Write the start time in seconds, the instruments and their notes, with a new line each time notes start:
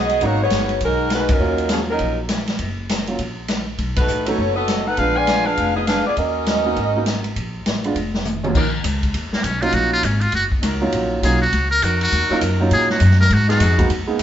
Already playing: upright bass B1, saxophone section B3 F#4 G#4 D#5
0.09 ride
0.21 upright bass G#1, grand piano F#3 B3 D#4 A#4, saxophone section A#3 D#4 F#4 C#5, kick, ride
0.42 saxophone section B3 F#4 G#4 C#5
0.50 upright bass G1, snare, hi-hat pedal, ride
0.69 ride
0.81 upright bass B1, saxophone section G#3 D#4 A#4, kick, ride
0.85 saxophone section F#4
1.10 saxophone section G#3 D#4 F#4 B4, snare, hi-hat pedal, ride
1.29 saxophone section F#3 C#4 D#4 A#4, kick, ride
1.39 upright bass D#2, grand piano F#3 A#3 C#4 F4
1.58 ride
1.69 saxophone section F3 A#3 C#4 G#4, snare, hi-hat pedal, ride
1.90 saxophone section F#3 C#4 D#4 A#4
1.99 upright bass A#1, kick, ride
2.29 snare, hi-hat pedal, ride
2.47 snare, ride
2.59 upright bass F#1, kick, ride
2.89 snare, hi-hat pedal, ride
3.07 grand piano F#3 A#3 C#4 F4, ride
3.19 upright bass A#1, kick, ride
3.48 snare, hi-hat pedal, ride
3.78 upright bass B1, kick, ride
3.96 saxophone section A3 D#4 F#4 B4, kick, ride
4.07 upright bass A1, hi-hat pedal
4.26 grand piano F#3 A3 C#4 D#4, saxophone section B3 F#4 A4 C#5, ride
4.38 upright bass F#1, kick
4.56 saxophone section B3 F#4 A4 D#5
4.68 snare, hi-hat pedal, ride
4.86 saxophone section D#4 A4 B4 F#5
4.97 upright bass A#1, grand piano G#3 B3 D4 F4, saxophone section D4 G#4 B4 F5, kick, ride
5.16 saxophone section F4 B4 D5 G#5
5.27 snare, hi-hat pedal, ride
5.45 saxophone section D4 G#4 B4 F5
5.57 upright bass F1, kick, ride
5.75 saxophone section B3 F4 G#4 D#5
5.87 saxophone section D4 G#4 B4 F5, snare, hi-hat pedal, ride
6.06 saxophone section B3 F4 G#4 D5, muted upright bass stroke
6.17 upright bass D#2, saxophone section C#4 F#4 A#4 D#5, kick, ride
6.46 snare, hi-hat pedal, ride
6.66 grand piano A#3 B3 D#4 F#4
6.76 upright bass G#1, kick, ride
6.95 grand piano A#3 B3 D#4 F#4
7.06 snare, hi-hat pedal, ride
7.24 ride
7.36 upright bass A#1, kick, ride
7.66 upright bass A1, snare, hi-hat pedal, ride
7.84 grand piano G#3 B3 D4 F4, ride
7.95 upright bass F1, kick, ride
8.14 snare
8.25 hi-hat pedal, mid tom
8.43 grand piano D#2 F#3 A#3 C#4 F4, mid tom
8.55 upright bass A#1, saxophone section F#3 C#4 D#4 A#4, kick, crash
8.84 upright bass C#2, kick, hi-hat pedal, ride
9.03 kick, ride
9.14 upright bass D#2, kick, ride
9.32 muted trumpet A#3, muted upright bass stroke, snare
9.44 upright bass B1, muted trumpet C#4, kick, hi-hat pedal, ride
9.62 grand piano F#3 A#3 C#4 D#4 F4, muted trumpet F4, ride
9.72 upright bass A#1, muted trumpet F#4, kick, ride
9.93 muted trumpet F4
10.03 upright bass G#1, muted trumpet C#4, kick, hi-hat pedal, ride
10.21 muted trumpet F4, ride
10.32 upright bass F#1, muted trumpet F#4, kick, ride
10.52 kick
10.62 upright bass C#2, saxophone section F#3 C#4 D#4 A#4, kick, hi-hat pedal, ride
10.81 grand piano F#3 A#3 C#4 D#4 F4
10.92 upright bass A#1, kick, ride
11.23 upright bass B1, grand piano F#3 A#3 C#4 D#4 F4, muted trumpet G#4, kick, hi-hat pedal, ride
11.42 muted trumpet F#4
11.53 upright bass C#2, kick, ride
11.71 muted trumpet A#4
11.82 upright bass F2, saxophone section F#3 C#4 D#4 A#4, muted trumpet F#4, kick, hi-hat pedal, ride
12.01 muted trumpet F#4, ride
12.12 upright bass D#2, kick, ride
12.29 saxophone section F#3 C#4 D#4 A#4, grand piano F#3 A#3 C#4 D#4 F4, muted upright bass stroke
12.41 upright bass F#2, kick, hi-hat pedal, ride
12.60 grand piano F#3 A#3 C#4 D#4 F4
12.71 upright bass A#2, muted trumpet G#4, kick, ride
12.90 muted trumpet F#4, snare
13.00 upright bass F#2, kick, hi-hat pedal, ride
13.11 snare
13.21 muted trumpet A#4, snare
13.30 upright bass G#2, muted trumpet F#4, kick, ride
13.48 saxophone section F#3 B3 D#4 G#4, muted trumpet F#4, snare, ride
13.60 upright bass F2, kick, hi-hat pedal, ride
13.78 grand piano G#3 A#3 B3 D#4 F#4, kick, ride
13.89 upright bass D#2, kick, ride
14.07 grand piano G#3 A#3 B3 D#4 G#4, muted upright bass stroke
14.19 hi-hat pedal, ride